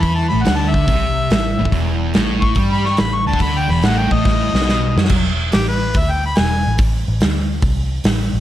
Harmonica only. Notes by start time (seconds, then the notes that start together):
0.02 B5
0.15 A5
0.29 B5
0.43 F#5
0.56 A5
0.70 E5
2.42 C#6
2.73 B5
2.87 C#6
2.99 B5
3.15 C#6
3.27 A5
3.41 B5
3.58 G5
3.72 B5
3.86 F#5
3.98 G5
4.12 D#5
5.53 G4
5.68 B4
5.98 E5
6.11 G5
6.26 B5
6.37 G#5